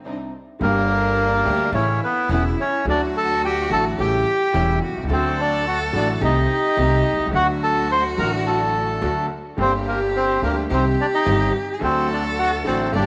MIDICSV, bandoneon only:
0, 0, Header, 1, 2, 480
1, 0, Start_track
1, 0, Tempo, 559701
1, 529, Time_signature, 4, 2, 24, 8
1, 11200, End_track
2, 0, Start_track
2, 0, Title_t, "Bandoneon"
2, 0, Program_c, 0, 23
2, 535, Note_on_c, 0, 70, 100
2, 541, Note_on_c, 0, 58, 73
2, 1464, Note_off_c, 0, 70, 0
2, 1467, Note_off_c, 0, 58, 0
2, 1495, Note_on_c, 0, 73, 83
2, 1500, Note_on_c, 0, 61, 59
2, 1719, Note_off_c, 0, 73, 0
2, 1722, Note_off_c, 0, 61, 0
2, 1748, Note_on_c, 0, 71, 85
2, 1755, Note_on_c, 0, 59, 74
2, 1967, Note_off_c, 0, 71, 0
2, 1971, Note_off_c, 0, 59, 0
2, 1990, Note_on_c, 0, 71, 82
2, 1995, Note_on_c, 0, 59, 70
2, 2096, Note_off_c, 0, 71, 0
2, 2099, Note_off_c, 0, 59, 0
2, 2233, Note_on_c, 0, 73, 87
2, 2235, Note_on_c, 0, 61, 71
2, 2450, Note_off_c, 0, 73, 0
2, 2451, Note_off_c, 0, 61, 0
2, 2482, Note_on_c, 0, 62, 82
2, 2483, Note_on_c, 0, 74, 102
2, 2585, Note_off_c, 0, 62, 0
2, 2586, Note_off_c, 0, 74, 0
2, 2723, Note_on_c, 0, 69, 76
2, 2723, Note_on_c, 0, 81, 106
2, 2934, Note_off_c, 0, 69, 0
2, 2935, Note_off_c, 0, 81, 0
2, 2960, Note_on_c, 0, 79, 103
2, 2963, Note_on_c, 0, 67, 77
2, 3173, Note_off_c, 0, 79, 0
2, 3175, Note_off_c, 0, 67, 0
2, 3194, Note_on_c, 0, 69, 69
2, 3195, Note_on_c, 0, 81, 102
2, 3299, Note_off_c, 0, 69, 0
2, 3299, Note_off_c, 0, 81, 0
2, 3433, Note_on_c, 0, 67, 72
2, 3434, Note_on_c, 0, 79, 99
2, 4110, Note_off_c, 0, 67, 0
2, 4111, Note_off_c, 0, 79, 0
2, 4394, Note_on_c, 0, 60, 75
2, 4408, Note_on_c, 0, 72, 94
2, 4607, Note_off_c, 0, 60, 0
2, 4632, Note_on_c, 0, 62, 65
2, 4637, Note_off_c, 0, 72, 0
2, 4644, Note_on_c, 0, 74, 82
2, 4846, Note_off_c, 0, 62, 0
2, 4852, Note_off_c, 0, 74, 0
2, 4861, Note_on_c, 0, 66, 68
2, 4876, Note_on_c, 0, 78, 87
2, 4967, Note_off_c, 0, 66, 0
2, 4978, Note_off_c, 0, 78, 0
2, 5110, Note_on_c, 0, 62, 63
2, 5119, Note_on_c, 0, 74, 85
2, 5213, Note_off_c, 0, 62, 0
2, 5220, Note_off_c, 0, 74, 0
2, 5351, Note_on_c, 0, 63, 76
2, 5354, Note_on_c, 0, 75, 89
2, 6263, Note_off_c, 0, 63, 0
2, 6265, Note_off_c, 0, 75, 0
2, 6305, Note_on_c, 0, 78, 112
2, 6307, Note_on_c, 0, 66, 79
2, 6409, Note_off_c, 0, 78, 0
2, 6410, Note_off_c, 0, 66, 0
2, 6545, Note_on_c, 0, 81, 98
2, 6548, Note_on_c, 0, 69, 73
2, 6761, Note_off_c, 0, 69, 0
2, 6782, Note_off_c, 0, 81, 0
2, 6788, Note_on_c, 0, 84, 102
2, 6789, Note_on_c, 0, 72, 85
2, 6891, Note_off_c, 0, 72, 0
2, 6891, Note_off_c, 0, 84, 0
2, 7024, Note_on_c, 0, 82, 95
2, 7026, Note_on_c, 0, 70, 78
2, 7129, Note_off_c, 0, 82, 0
2, 7130, Note_off_c, 0, 70, 0
2, 7259, Note_on_c, 0, 81, 82
2, 7266, Note_on_c, 0, 69, 73
2, 7943, Note_off_c, 0, 81, 0
2, 7946, Note_off_c, 0, 69, 0
2, 8229, Note_on_c, 0, 60, 74
2, 8246, Note_on_c, 0, 72, 99
2, 8334, Note_off_c, 0, 60, 0
2, 8347, Note_off_c, 0, 72, 0
2, 8466, Note_on_c, 0, 58, 56
2, 8476, Note_on_c, 0, 70, 80
2, 8572, Note_off_c, 0, 58, 0
2, 8579, Note_off_c, 0, 70, 0
2, 8713, Note_on_c, 0, 60, 67
2, 8718, Note_on_c, 0, 72, 91
2, 8928, Note_off_c, 0, 60, 0
2, 8931, Note_off_c, 0, 72, 0
2, 8952, Note_on_c, 0, 58, 56
2, 8953, Note_on_c, 0, 70, 86
2, 9056, Note_off_c, 0, 58, 0
2, 9057, Note_off_c, 0, 70, 0
2, 9202, Note_on_c, 0, 60, 70
2, 9203, Note_on_c, 0, 72, 90
2, 9304, Note_off_c, 0, 60, 0
2, 9305, Note_off_c, 0, 72, 0
2, 9439, Note_on_c, 0, 62, 76
2, 9442, Note_on_c, 0, 74, 102
2, 9488, Note_off_c, 0, 62, 0
2, 9490, Note_off_c, 0, 74, 0
2, 9559, Note_on_c, 0, 75, 87
2, 9561, Note_on_c, 0, 63, 70
2, 9882, Note_off_c, 0, 75, 0
2, 9883, Note_off_c, 0, 63, 0
2, 10150, Note_on_c, 0, 60, 74
2, 10156, Note_on_c, 0, 72, 98
2, 10364, Note_off_c, 0, 60, 0
2, 10368, Note_off_c, 0, 72, 0
2, 10402, Note_on_c, 0, 62, 58
2, 10405, Note_on_c, 0, 74, 76
2, 10503, Note_off_c, 0, 62, 0
2, 10505, Note_off_c, 0, 74, 0
2, 10623, Note_on_c, 0, 78, 97
2, 10629, Note_on_c, 0, 66, 76
2, 10727, Note_off_c, 0, 78, 0
2, 10732, Note_off_c, 0, 66, 0
2, 10863, Note_on_c, 0, 60, 64
2, 10863, Note_on_c, 0, 72, 81
2, 11077, Note_off_c, 0, 60, 0
2, 11077, Note_off_c, 0, 72, 0
2, 11107, Note_on_c, 0, 74, 95
2, 11112, Note_on_c, 0, 62, 74
2, 11200, Note_off_c, 0, 62, 0
2, 11200, Note_off_c, 0, 74, 0
2, 11200, End_track
0, 0, End_of_file